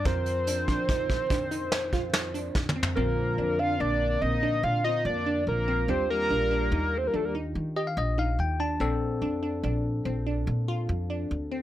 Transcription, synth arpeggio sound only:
0.06 C4
0.47 D4
0.68 D4
0.89 D#4
1.31 D4
1.51 D#4
1.93 F4
2.34 D4
2.76 C4
2.97 C4
3.38 D4
3.59 D4
3.80 D4
4.22 C4
4.43 D4
4.85 F4
5.26 D4
5.68 C4
5.89 C4
6.30 D4
6.51 D4
6.72 D#4
7.14 D4
7.35 D#4
7.76 G4
8.18 D#4
8.60 D4
8.80 C4
9.22 D4
9.43 D4
9.64 D4
10.05 C4
10.27 D4
10.68 F4
11.10 D4
11.52 C4

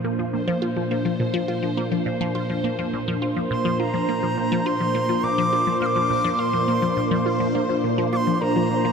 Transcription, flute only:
3.51 C6
3.80 A#5
4.66 C6
5.24 D6
5.82 F6
5.86 D6
6.40 C6
8.13 D6
8.17 C6
8.34 C6
8.42 A#5

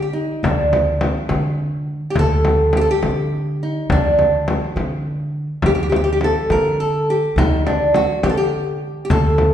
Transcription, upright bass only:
Already playing: D3
0.43 D2
1.30 D3
2.16 D2
3.03 D3
3.90 D2
4.76 D3
5.63 D2
6.50 D3
7.36 D2
8.23 D3
9.10 D2

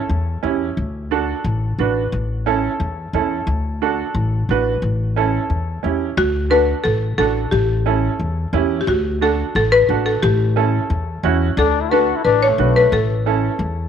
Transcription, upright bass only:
0.09 E2
0.43 E2
0.77 D2
1.44 A1
1.79 A1
2.12 A1
2.80 E2
3.13 E2
3.47 D2
4.14 A1
4.49 A1
4.82 A1
5.50 E2
5.84 E2
6.17 D2
6.85 A1
7.18 A1
7.52 A1
8.19 E2
8.53 E2
8.87 D2
9.55 A1
9.89 A1
10.23 A1
10.90 E2
11.23 E2
11.57 D2
12.25 A1
12.58 B1
12.92 A1
13.59 E2

